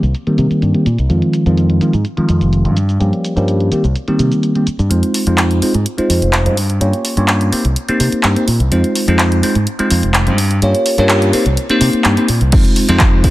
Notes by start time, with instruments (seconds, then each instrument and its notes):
0.03 fingered electric bass C2, closed hi-hat, shaker
0.15 closed hi-hat, shaker
0.27 tine electric piano D#3 G3 A#3 C4 G4, muted fingered electric bass stroke, closed hi-hat
0.38 fingered electric bass C3, closed hi-hat, shaker
0.51 muted fingered electric bass stroke, closed hi-hat, shaker
0.62 fingered electric bass G2, closed hi-hat, shaker
0.74 tine electric piano D#3 G3 A#3 C4 G4, closed hi-hat
0.86 fingered electric bass A#2, closed hi-hat, shaker
0.98 fingered electric bass C2, closed hi-hat, shaker
1.09 fingered electric bass F2, tine electric piano D#3 F3 G#3 C4 F4, closed hi-hat, shaker
1.22 closed hi-hat
1.33 closed hi-hat, shaker
1.46 fingered electric bass F2, tine electric piano D#3 F3 G#3 C4 F4, closed hi-hat, shaker
1.57 closed hi-hat, shaker
1.70 closed hi-hat
1.81 tine electric piano D#3 F3 G#3 C4 F4, muted fingered electric bass stroke, closed hi-hat, shaker
1.93 fingered electric bass G#2, closed hi-hat, shaker
2.05 closed hi-hat, shaker
2.17 tine electric piano D#3 F3 G#3 C4 F4, muted fingered electric bass stroke, closed hi-hat
2.29 fingered electric bass F2, closed hi-hat, shaker
2.41 fingered electric bass F1, closed hi-hat, shaker
2.53 closed hi-hat, shaker
2.65 fingered electric bass G2, tine electric piano D#3 F3 G#3 C4 F4, closed hi-hat
2.77 closed hi-hat, shaker
2.89 closed hi-hat, shaker
3.00 fingered electric bass G2, tine electric piano F3 G3 A#3 C#4 G4, closed hi-hat, shaker
3.13 closed hi-hat
3.25 closed hi-hat, shaker
3.36 fingered electric bass G2, tine electric piano F3 G3 A#3 C#4 G4, closed hi-hat, shaker
3.48 closed hi-hat, shaker
3.60 closed hi-hat
3.71 tine electric piano D#3 G3 A#3 C4 G4, muted fingered electric bass stroke, closed hi-hat, shaker
3.84 fingered electric bass C2, closed hi-hat, shaker
3.96 closed hi-hat, shaker
4.08 tine electric piano D#3 G3 A#3 C4 G4, muted fingered electric bass stroke, closed hi-hat
4.19 fingered electric bass C3, closed hi-hat, shaker
4.32 closed hi-hat, shaker
4.43 closed hi-hat, shaker
4.55 tine electric piano D#3 G3 A#3 C4 G4, closed hi-hat
4.67 muted fingered electric bass stroke, closed hi-hat, shaker
4.79 fingered electric bass G2, closed hi-hat, shaker
4.90 fingered electric bass F2, tine electric piano G#3 C4 D#4 F4 C5, closed hi-hat
5.03 closed hi-hat
5.14 open hi-hat
5.27 fingered electric bass F2, tine electric piano G#3 C4 D#4 F4 C5, closed hi-hat
5.38 clap, closed hi-hat
5.51 closed hi-hat
5.62 tine electric piano G#3 C4 D#4 F4 C5, muted fingered electric bass stroke, open hi-hat
5.74 fingered electric bass G#2, closed hi-hat
5.86 closed hi-hat
5.98 tine electric piano G#3 C4 D#4 F4 C5, muted fingered electric bass stroke, closed hi-hat
6.10 fingered electric bass F2, open hi-hat
6.22 fingered electric bass F1, closed hi-hat
6.33 clap, closed hi-hat
6.45 fingered electric bass G2, tine electric piano G#3 C4 D#4 F4 C5, closed hi-hat
6.57 open hi-hat
6.70 closed hi-hat
6.80 fingered electric bass G2, tine electric piano A#3 C#4 F4 G4 C#5, closed hi-hat
6.93 closed hi-hat
7.05 open hi-hat
7.17 fingered electric bass G2, tine electric piano A#3 C#4 F4 G4 C#5, closed hi-hat
7.28 clap, closed hi-hat
7.41 closed hi-hat
7.52 tine electric piano A#3 C4 D#4 G4 C5, muted fingered electric bass stroke, open hi-hat
7.65 fingered electric bass C2, closed hi-hat
7.76 closed hi-hat
7.88 tine electric piano A#3 C4 D#4 G4 C5, muted fingered electric bass stroke, closed hi-hat
8.00 fingered electric bass C3, open hi-hat
8.12 muted fingered electric bass stroke, closed hi-hat
8.23 fingered electric bass G2, clap, closed hi-hat
8.36 tine electric piano A#3 C4 D#4 G4 C5, closed hi-hat
8.48 fingered electric bass A#2, open hi-hat
8.60 fingered electric bass C2, closed hi-hat
8.72 fingered electric bass F2, tine electric piano G#3 C4 D#4 F4 C5, closed hi-hat
8.84 closed hi-hat
8.95 open hi-hat
9.08 fingered electric bass F2, tine electric piano G#3 C4 D#4 F4 C5, closed hi-hat
9.19 clap, closed hi-hat
9.32 closed hi-hat
9.43 tine electric piano G#3 C4 D#4 F4 C5, muted fingered electric bass stroke, open hi-hat
9.55 fingered electric bass G#2, closed hi-hat
9.67 closed hi-hat
9.79 tine electric piano G#3 C4 D#4 F4 C5, muted fingered electric bass stroke, closed hi-hat
9.91 fingered electric bass F2, open hi-hat
10.03 fingered electric bass F1, closed hi-hat
10.14 clap, closed hi-hat
10.27 fingered electric bass G2, tine electric piano G#3 C4 D#4 F4 C5, closed hi-hat
10.38 open hi-hat
10.51 closed hi-hat
10.62 fingered electric bass G2, tine electric piano A#3 C#4 F4 G4 C#5, closed hi-hat
10.75 closed hi-hat
10.86 open hi-hat
10.98 fingered electric bass G2, tine electric piano A#3 C#4 F4 G4 C#5, closed hi-hat
11.09 clap, closed hi-hat
11.22 closed hi-hat
11.33 tine electric piano A#3 C4 D#4 G4 C5, muted fingered electric bass stroke, open hi-hat
11.46 fingered electric bass C2, closed hi-hat
11.57 closed hi-hat
11.69 tine electric piano A#3 C4 D#4 G4 C5, muted fingered electric bass stroke, closed hi-hat
11.81 fingered electric bass C3, open hi-hat
11.93 muted fingered electric bass stroke, closed hi-hat
12.04 fingered electric bass G2, clap, closed hi-hat
12.17 tine electric piano A#3 C4 D#4 G4 C5, closed hi-hat
12.28 fingered electric bass A#2, open hi-hat
12.41 fingered electric bass C2, closed hi-hat
12.52 fingered electric bass F2, tine electric piano G#3 C4 D#4 F4 C5, kick, closed hi-hat, crash
12.65 closed hi-hat
12.76 open hi-hat
12.89 fingered electric bass F2, tine electric piano G#3 C4 D#4 F4 C5, closed hi-hat
12.99 kick, clap, closed hi-hat
13.24 tine electric piano G#3 C4 D#4 F4 C5, kick, open hi-hat